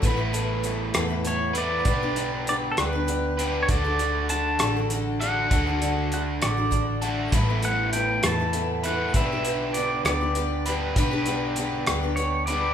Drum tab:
HH |xxxxxx|xxxxxx|xxxxxx|xxxxxx|
SD |---r--|---r--|---r--|---r--|
BD |o-----|o-----|o-----|o---o-|

HH |xxxxxx|xxxxxx|xxxxxx|
SD |---r--|---r--|---r--|
BD |o-----|o-----|o-----|